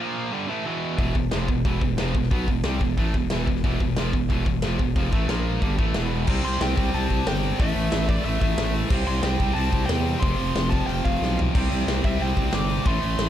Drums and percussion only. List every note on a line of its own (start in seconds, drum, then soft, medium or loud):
0.98 kick loud
0.98 open hi-hat soft
1.15 kick medium
1.32 snare loud
1.32 open hi-hat medium
1.48 kick medium
1.65 kick loud
1.65 open hi-hat soft
1.81 kick medium
1.98 snare loud
1.98 open hi-hat medium
2.15 kick medium
2.23 snare soft
2.31 kick medium
2.31 open hi-hat medium
2.48 kick medium
2.64 snare loud
2.64 open hi-hat medium
2.81 kick medium
2.97 kick medium
2.97 open hi-hat medium
3.14 kick medium
3.30 snare loud
3.30 open hi-hat medium
3.47 kick medium
3.56 snare soft
3.64 kick loud
3.64 open hi-hat medium
3.80 kick medium
3.97 snare loud
3.97 open hi-hat medium
4.13 kick medium
4.30 kick medium
4.30 open hi-hat medium
4.46 kick medium
4.62 snare loud
4.62 open hi-hat medium
4.79 kick medium
4.96 kick loud
4.96 open hi-hat medium
5.13 kick loud
5.29 snare loud
5.29 open hi-hat medium
5.62 kick loud
5.62 open hi-hat medium
5.79 kick loud
5.94 snare loud
5.94 open hi-hat medium
6.27 kick loud
6.27 crash loud
6.44 open hi-hat medium
6.61 snare loud
6.61 open hi-hat medium
6.77 kick medium
6.77 open hi-hat medium
6.94 open hi-hat medium
7.10 kick medium
7.10 open hi-hat medium
7.27 snare loud
7.27 open hi-hat loud
7.43 open hi-hat medium
7.59 kick loud
7.59 open hi-hat loud
7.76 open hi-hat medium
7.92 snare loud
7.92 open hi-hat loud
8.09 kick medium
8.09 open hi-hat medium
8.25 open hi-hat medium
8.41 kick medium
8.41 open hi-hat medium
8.58 snare loud
8.58 open hi-hat medium
8.74 open hi-hat medium
8.90 kick loud
8.90 crash loud
9.07 open hi-hat medium
9.23 snare loud
9.23 open hi-hat medium
9.40 kick medium
9.40 open hi-hat medium
9.56 open hi-hat medium
9.73 kick medium
9.73 open hi-hat medium
9.89 snare loud
9.89 open hi-hat medium
10.06 open hi-hat medium
10.23 kick loud
10.23 open hi-hat medium
10.39 open hi-hat medium
10.56 snare loud
10.56 open hi-hat loud
10.72 kick medium
10.72 open hi-hat medium
10.89 open hi-hat medium
11.05 kick medium
11.05 open hi-hat medium
11.22 snare medium
11.39 floor tom loud
11.55 kick loud
11.55 crash loud
11.71 open hi-hat medium
11.88 snare loud
11.88 open hi-hat medium
12.04 kick medium
12.04 open hi-hat medium
12.21 open hi-hat medium
12.37 kick medium
12.37 open hi-hat medium
12.53 snare loud
12.53 open hi-hat loud
12.69 open hi-hat medium
12.85 kick loud
12.85 open hi-hat medium
13.03 open hi-hat medium
13.19 snare loud
13.19 open hi-hat loud